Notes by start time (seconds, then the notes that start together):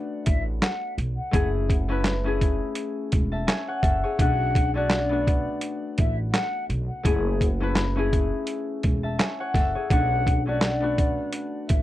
Already playing: A3 B3 D4 F#4
0.25 A1 E5, kick, closed hi-hat
0.62 F#5, snare, clap, closed hi-hat
0.98 B1, closed hi-hat
1.31 F#1 A3 C#4 E4 G#4, kick, closed hi-hat
1.70 kick, closed hi-hat
1.88 A3 C#4 E4 B4
2.04 snare, clap, closed hi-hat
2.24 A3 C#4 E4 G#4
2.42 kick, closed hi-hat
2.75 closed hi-hat
3.12 E1, kick, closed hi-hat
3.32 E5 A5
3.47 C#5 G#5, snare, clap, closed hi-hat
3.68 C#5 F#5
3.83 F#1 A4 E5, kick, closed hi-hat
4.04 G#4 C#5
4.18 B1 A3 C#4 D4 F#4 F#5, kick, closed hi-hat
4.55 kick, closed hi-hat
4.74 A3 C#4 D4 F#4 D5
4.90 snare, clap, closed hi-hat
5.09 A3 B3 D4 F#4
5.27 kick, closed hi-hat
5.61 closed hi-hat
5.98 A1 E5, kick, closed hi-hat
6.32 F#5, snare, clap, closed hi-hat
6.69 B1, closed hi-hat
7.03 F#1 A3 C#4 E4 G#4, kick, closed hi-hat
7.41 kick, closed hi-hat
7.60 A3 C#4 E4 B4
7.76 snare, clap, closed hi-hat
7.96 A3 C#4 E4 G#4
8.13 kick, closed hi-hat
8.47 closed hi-hat
8.83 E1, kick, closed hi-hat
9.03 E5 A5
9.19 C#5 G#5, snare, clap, closed hi-hat
9.40 C#5 F#5
9.54 F#1 A4 E5, kick, snare, closed hi-hat
9.75 G#4 C#5
9.90 B1 A3 C#4 D4 F#4 F#5, kick, closed hi-hat
10.27 kick, closed hi-hat
10.46 A3 C#4 D4 F#4 D5
10.61 snare, clap, closed hi-hat
10.81 A3 B3 D4 F#4
10.99 kick, closed hi-hat
11.33 closed hi-hat
11.68 A1 E5, kick, closed hi-hat